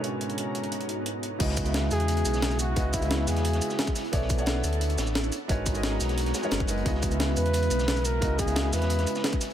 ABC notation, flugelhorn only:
X:1
M:4/4
L:1/8
Q:1/4=176
K:C#dor
V:1 name="Flugelhorn"
C6 z2 | z3 G4 F- | F E2 G4 z | z8 |
z8 | z3 B4 A- | A G2 B4 z |]